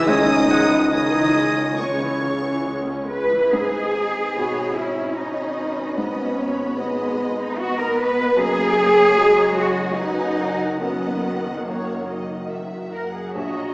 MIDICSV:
0, 0, Header, 1, 10, 480
1, 0, Start_track
1, 0, Key_signature, 5, "minor"
1, 0, Tempo, 858369
1, 513, Time_signature, 3, 2, 24, 8
1, 2440, Tempo, 802139
1, 5800, Tempo, 842697
1, 7942, End_track
2, 0, Start_track
2, 0, Title_t, "Violin section"
2, 0, Program_c, 0, 48
2, 41, Note_on_c, 0, 87, 124
2, 509, Note_off_c, 0, 87, 0
2, 516, Note_on_c, 0, 87, 109
2, 998, Note_off_c, 0, 87, 0
2, 1006, Note_on_c, 0, 85, 80
2, 1731, Note_off_c, 0, 85, 0
2, 1975, Note_on_c, 0, 80, 59
2, 2417, Note_off_c, 0, 80, 0
2, 2444, Note_on_c, 0, 83, 53
2, 2915, Note_off_c, 0, 83, 0
2, 2923, Note_on_c, 0, 83, 61
2, 4814, Note_off_c, 0, 83, 0
2, 4841, Note_on_c, 0, 82, 66
2, 5312, Note_off_c, 0, 82, 0
2, 5319, Note_on_c, 0, 82, 74
2, 5554, Note_off_c, 0, 82, 0
2, 5563, Note_on_c, 0, 80, 69
2, 6273, Note_on_c, 0, 78, 62
2, 6274, Note_off_c, 0, 80, 0
2, 7583, Note_off_c, 0, 78, 0
2, 7728, Note_on_c, 0, 82, 52
2, 7942, Note_off_c, 0, 82, 0
2, 7942, End_track
3, 0, Start_track
3, 0, Title_t, "Oboe"
3, 0, Program_c, 1, 68
3, 45, Note_on_c, 1, 80, 106
3, 282, Note_on_c, 1, 78, 89
3, 290, Note_off_c, 1, 80, 0
3, 512, Note_off_c, 1, 78, 0
3, 515, Note_on_c, 1, 80, 87
3, 1710, Note_off_c, 1, 80, 0
3, 7942, End_track
4, 0, Start_track
4, 0, Title_t, "Flute"
4, 0, Program_c, 2, 73
4, 44, Note_on_c, 2, 75, 101
4, 505, Note_off_c, 2, 75, 0
4, 508, Note_on_c, 2, 75, 91
4, 1011, Note_on_c, 2, 73, 67
4, 1020, Note_off_c, 2, 75, 0
4, 1734, Note_off_c, 2, 73, 0
4, 7942, End_track
5, 0, Start_track
5, 0, Title_t, "Violin section"
5, 0, Program_c, 3, 48
5, 35, Note_on_c, 3, 75, 92
5, 498, Note_off_c, 3, 75, 0
5, 504, Note_on_c, 3, 75, 97
5, 992, Note_off_c, 3, 75, 0
5, 1005, Note_on_c, 3, 73, 72
5, 1731, Note_off_c, 3, 73, 0
5, 1975, Note_on_c, 3, 75, 51
5, 1978, Note_on_c, 3, 71, 54
5, 2194, Note_off_c, 3, 71, 0
5, 2198, Note_off_c, 3, 75, 0
5, 2204, Note_on_c, 3, 75, 54
5, 2435, Note_on_c, 3, 73, 65
5, 2677, Note_off_c, 3, 73, 0
5, 2684, Note_on_c, 3, 73, 52
5, 2911, Note_off_c, 3, 75, 0
5, 2915, Note_off_c, 3, 73, 0
5, 2918, Note_on_c, 3, 75, 53
5, 2922, Note_on_c, 3, 73, 48
5, 3158, Note_off_c, 3, 73, 0
5, 3161, Note_on_c, 3, 71, 52
5, 3393, Note_off_c, 3, 75, 0
5, 3401, Note_on_c, 3, 75, 55
5, 3639, Note_off_c, 3, 75, 0
5, 3647, Note_on_c, 3, 73, 61
5, 3879, Note_on_c, 3, 75, 55
5, 3881, Note_off_c, 3, 75, 0
5, 3881, Note_on_c, 3, 75, 68
5, 3885, Note_off_c, 3, 71, 0
5, 3886, Note_off_c, 3, 73, 0
5, 4354, Note_off_c, 3, 75, 0
5, 4361, Note_on_c, 3, 75, 64
5, 4827, Note_off_c, 3, 75, 0
5, 4839, Note_on_c, 3, 75, 60
5, 4841, Note_off_c, 3, 75, 0
5, 4841, Note_on_c, 3, 75, 75
5, 5071, Note_on_c, 3, 73, 64
5, 5072, Note_off_c, 3, 75, 0
5, 5321, Note_on_c, 3, 75, 73
5, 5782, Note_off_c, 3, 73, 0
5, 5792, Note_off_c, 3, 75, 0
5, 5804, Note_on_c, 3, 78, 68
5, 5807, Note_on_c, 3, 71, 66
5, 6030, Note_on_c, 3, 70, 57
5, 6036, Note_off_c, 3, 71, 0
5, 6270, Note_off_c, 3, 70, 0
5, 6273, Note_off_c, 3, 78, 0
5, 6280, Note_on_c, 3, 75, 54
5, 6281, Note_on_c, 3, 78, 57
5, 6705, Note_off_c, 3, 75, 0
5, 6705, Note_off_c, 3, 78, 0
5, 6761, Note_on_c, 3, 73, 62
5, 6984, Note_off_c, 3, 73, 0
5, 7011, Note_on_c, 3, 75, 47
5, 7245, Note_off_c, 3, 75, 0
5, 7245, Note_on_c, 3, 76, 48
5, 7483, Note_off_c, 3, 76, 0
5, 7485, Note_on_c, 3, 78, 45
5, 7723, Note_off_c, 3, 78, 0
5, 7726, Note_on_c, 3, 76, 48
5, 7727, Note_on_c, 3, 73, 52
5, 7834, Note_off_c, 3, 76, 0
5, 7846, Note_on_c, 3, 82, 42
5, 7942, Note_off_c, 3, 73, 0
5, 7942, Note_off_c, 3, 82, 0
5, 7942, End_track
6, 0, Start_track
6, 0, Title_t, "Cello section"
6, 0, Program_c, 4, 48
6, 41, Note_on_c, 4, 51, 102
6, 510, Note_off_c, 4, 51, 0
6, 517, Note_on_c, 4, 51, 99
6, 998, Note_off_c, 4, 51, 0
6, 1008, Note_on_c, 4, 49, 73
6, 1731, Note_on_c, 4, 71, 92
6, 1732, Note_off_c, 4, 49, 0
6, 1955, Note_off_c, 4, 71, 0
6, 1973, Note_on_c, 4, 68, 96
6, 2681, Note_off_c, 4, 68, 0
6, 2681, Note_on_c, 4, 64, 79
6, 2921, Note_off_c, 4, 64, 0
6, 2924, Note_on_c, 4, 63, 68
6, 3405, Note_off_c, 4, 63, 0
6, 3407, Note_on_c, 4, 61, 79
6, 3887, Note_off_c, 4, 61, 0
6, 3889, Note_on_c, 4, 59, 75
6, 4238, Note_off_c, 4, 59, 0
6, 4246, Note_on_c, 4, 63, 84
6, 4361, Note_off_c, 4, 63, 0
6, 4364, Note_on_c, 4, 66, 102
6, 4482, Note_off_c, 4, 66, 0
6, 4483, Note_on_c, 4, 70, 92
6, 4601, Note_off_c, 4, 70, 0
6, 4601, Note_on_c, 4, 71, 109
6, 4838, Note_off_c, 4, 71, 0
6, 4840, Note_on_c, 4, 68, 126
6, 5558, Note_off_c, 4, 68, 0
6, 5558, Note_on_c, 4, 66, 94
6, 5800, Note_off_c, 4, 66, 0
6, 5800, Note_on_c, 4, 63, 91
6, 6271, Note_off_c, 4, 63, 0
6, 6272, Note_on_c, 4, 59, 86
6, 6749, Note_off_c, 4, 59, 0
6, 6760, Note_on_c, 4, 58, 62
6, 7240, Note_off_c, 4, 58, 0
6, 7482, Note_on_c, 4, 70, 62
6, 7594, Note_off_c, 4, 70, 0
6, 7605, Note_on_c, 4, 68, 58
6, 7720, Note_off_c, 4, 68, 0
6, 7724, Note_on_c, 4, 66, 75
6, 7942, Note_off_c, 4, 66, 0
6, 7942, End_track
7, 0, Start_track
7, 0, Title_t, "French horn section"
7, 0, Program_c, 5, 60
7, 40, Note_on_c, 5, 63, 103
7, 508, Note_off_c, 5, 63, 0
7, 515, Note_on_c, 5, 63, 97
7, 997, Note_off_c, 5, 63, 0
7, 1010, Note_on_c, 5, 61, 67
7, 1733, Note_off_c, 5, 61, 0
7, 7942, End_track
8, 0, Start_track
8, 0, Title_t, "Viola section"
8, 0, Program_c, 6, 48
8, 37, Note_on_c, 6, 56, 82
8, 150, Note_on_c, 6, 61, 73
8, 153, Note_off_c, 6, 56, 0
8, 270, Note_off_c, 6, 61, 0
8, 271, Note_on_c, 6, 56, 77
8, 387, Note_on_c, 6, 52, 70
8, 391, Note_off_c, 6, 56, 0
8, 511, Note_off_c, 6, 52, 0
8, 516, Note_on_c, 6, 49, 72
8, 629, Note_off_c, 6, 49, 0
8, 634, Note_on_c, 6, 52, 70
8, 759, Note_off_c, 6, 52, 0
8, 760, Note_on_c, 6, 56, 65
8, 883, Note_off_c, 6, 56, 0
8, 889, Note_on_c, 6, 61, 59
8, 1009, Note_off_c, 6, 61, 0
8, 1012, Note_on_c, 6, 56, 67
8, 1131, Note_off_c, 6, 56, 0
8, 1134, Note_on_c, 6, 52, 63
8, 1251, Note_off_c, 6, 52, 0
8, 1255, Note_on_c, 6, 49, 57
8, 1371, Note_off_c, 6, 49, 0
8, 1371, Note_on_c, 6, 52, 59
8, 1487, Note_on_c, 6, 56, 61
8, 1489, Note_off_c, 6, 52, 0
8, 1608, Note_off_c, 6, 56, 0
8, 1611, Note_on_c, 6, 61, 55
8, 1733, Note_off_c, 6, 61, 0
8, 1735, Note_on_c, 6, 56, 60
8, 1855, Note_off_c, 6, 56, 0
8, 1859, Note_on_c, 6, 52, 61
8, 1975, Note_off_c, 6, 52, 0
8, 2442, Note_on_c, 6, 59, 62
8, 2666, Note_off_c, 6, 59, 0
8, 2686, Note_on_c, 6, 61, 61
8, 3392, Note_off_c, 6, 61, 0
8, 3404, Note_on_c, 6, 59, 64
8, 3639, Note_off_c, 6, 59, 0
8, 3646, Note_on_c, 6, 59, 57
8, 3886, Note_off_c, 6, 59, 0
8, 3891, Note_on_c, 6, 56, 65
8, 4365, Note_off_c, 6, 56, 0
8, 4368, Note_on_c, 6, 59, 80
8, 4831, Note_off_c, 6, 59, 0
8, 4846, Note_on_c, 6, 58, 77
8, 5320, Note_off_c, 6, 58, 0
8, 5324, Note_on_c, 6, 56, 76
8, 5803, Note_off_c, 6, 56, 0
8, 5806, Note_on_c, 6, 54, 70
8, 6274, Note_off_c, 6, 54, 0
8, 6277, Note_on_c, 6, 51, 63
8, 7461, Note_off_c, 6, 51, 0
8, 7727, Note_on_c, 6, 75, 60
8, 7942, Note_off_c, 6, 75, 0
8, 7942, End_track
9, 0, Start_track
9, 0, Title_t, "Felt piano"
9, 0, Program_c, 7, 0
9, 0, Control_c, 7, 64, 127
9, 0, Note_on_c, 7, 37, 84
9, 0, Note_on_c, 7, 44, 66
9, 44, Note_on_c, 7, 61, 54
9, 45, Note_on_c, 7, 56, 65
9, 49, Note_on_c, 7, 73, 68
9, 321, Note_off_c, 7, 44, 0
9, 491, Note_off_c, 7, 37, 0
9, 524, Control_c, 7, 64, 0
9, 636, Control_c, 7, 64, 127
9, 1953, Note_off_c, 7, 56, 0
9, 1953, Note_off_c, 7, 61, 0
9, 1956, Note_off_c, 7, 73, 0
9, 1973, Note_on_c, 7, 44, 51
9, 1983, Control_c, 7, 64, 0
9, 2072, Control_c, 7, 64, 127
9, 2444, Note_on_c, 7, 47, 42
9, 3380, Note_off_c, 7, 44, 0
9, 3403, Note_on_c, 7, 44, 50
9, 3416, Control_c, 7, 64, 0
9, 3525, Control_c, 7, 64, 127
9, 3883, Note_on_c, 7, 59, 45
9, 3984, Note_off_c, 7, 47, 0
9, 4813, Note_off_c, 7, 44, 0
9, 4836, Note_off_c, 7, 59, 0
9, 4836, Note_on_c, 7, 42, 58
9, 4847, Control_c, 7, 64, 0
9, 4952, Control_c, 7, 64, 127
9, 5315, Note_on_c, 7, 54, 51
9, 6247, Note_off_c, 7, 42, 0
9, 6272, Note_on_c, 7, 42, 46
9, 6282, Control_c, 7, 64, 0
9, 6368, Control_c, 7, 64, 127
9, 6756, Note_on_c, 7, 58, 36
9, 6855, Note_off_c, 7, 54, 0
9, 7699, Note_off_c, 7, 42, 0
9, 7720, Note_off_c, 7, 58, 0
9, 7721, Note_on_c, 7, 34, 39
9, 7732, Control_c, 7, 64, 0
9, 7833, Control_c, 7, 64, 127
9, 7942, Note_off_c, 7, 34, 0
9, 7942, End_track
10, 0, Start_track
10, 0, Title_t, "Double bass section"
10, 0, Program_c, 8, 48
10, 0, Note_on_c, 8, 37, 94
10, 1834, Note_off_c, 8, 37, 0
10, 1977, Note_on_c, 8, 32, 56
10, 4816, Note_off_c, 8, 32, 0
10, 4842, Note_on_c, 8, 30, 70
10, 7584, Note_off_c, 8, 30, 0
10, 7727, Note_on_c, 8, 34, 47
10, 7942, Note_off_c, 8, 34, 0
10, 7942, End_track
0, 0, End_of_file